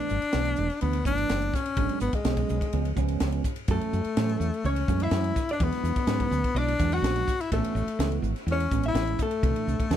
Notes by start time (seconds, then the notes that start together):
Already playing: E3 A3 B3 D4
0.09 G1, hi-hat pedal
0.22 ride
0.33 B1 E3 A3 B3 D4, snare, ride
0.45 ride
0.56 E1, hi-hat pedal
0.70 snare, ride
0.81 D2 E3 A3 B3 D4, ride
0.93 ride
1.05 G1 E3 A3 B3 D4, kick, hi-hat pedal
1.18 ride
1.29 F#1, snare, ride
1.42 ride
1.54 C#4, kick, snare, hi-hat pedal
1.66 ride
1.77 G#1 F#3 G#3 B3 D4, kick, ride
1.89 ride
2.00 G#1 B3, hi-hat pedal
2.13 G#3, kick, ride
2.25 B1 F#3 G#3 B3 C#4, snare, ride
2.37 kick, ride
2.49 B1, hi-hat pedal
2.61 kick, ride
2.73 C#2 F3 G#3 B3 C#4, ride
2.85 ride
2.96 C#2 F3 G#3 B3 C#4, kick, hi-hat pedal
3.08 ride
3.20 C#2, snare, ride
3.32 ride
3.44 kick, hi-hat pedal
3.56 ride
3.68 F#2 E3 F#3 A3 C#4 A4, kick, ride
3.81 ride
3.93 F#2, hi-hat pedal
4.04 muted fretless electric bass stroke, ride
4.16 A2 E3 F#3 A3 C#4, snare, ride
4.29 snare, ride
4.40 E2, hi-hat pedal
4.54 ride
4.63 C#2 E3 G#3 A3 C#4 C#5, ride
4.76 ride
4.88 F#2 E3 G#3 A3 C#4, kick, hi-hat pedal
5.00 E4 E5, ride
5.11 F#2, snare, ride
5.24 ride
5.36 kick, snare, hi-hat pedal
5.49 D4 D5, ride
5.60 E2 F#3 G#3 B3 D4 B4, kick, ride
5.72 snare, ride
5.83 E2, hi-hat pedal
5.96 kick, ride
6.07 G#2 F#3 G#3 B3 C#4, snare, ride
6.20 kick, ride
6.31 D2, hi-hat pedal
6.44 kick, ride
6.55 B1 F#3 G#3 B3 D4 E4 D5, ride
6.68 ride
6.79 E2 F#3 G#3 B3 D4, kick, hi-hat pedal
6.92 F#4 F#5, ride
7.02 A#1, snare, ride
7.16 ride
7.28 kick, hi-hat pedal
7.41 E4 E5, ride
7.52 A1 E3 A3 B3 C#4 A4, kick, ride
7.64 ride
7.75 A1, hi-hat pedal
7.88 ride
7.99 C#2 E3 G#3 B3 E4, snare, ride
8.12 ride
8.22 G#1, hi-hat pedal
8.36 snare, ride
8.47 E2 E3 G#3 B3 E4, ride
8.51 C#4 C#5
8.60 ride
8.71 A1 E3 G#3 B3 C#4, kick, hi-hat pedal
8.83 E5, ride
8.88 E4
8.94 A1, snare, ride
9.07 ride
9.18 kick, hi-hat pedal
9.22 A3 A4
9.31 ride
9.42 C2 A#2 E3 A3 D4, kick, ride
9.56 ride
9.67 C2, hi-hat pedal
9.80 kick, ride
9.90 E2 A#2 E3 A3 D4, snare, ride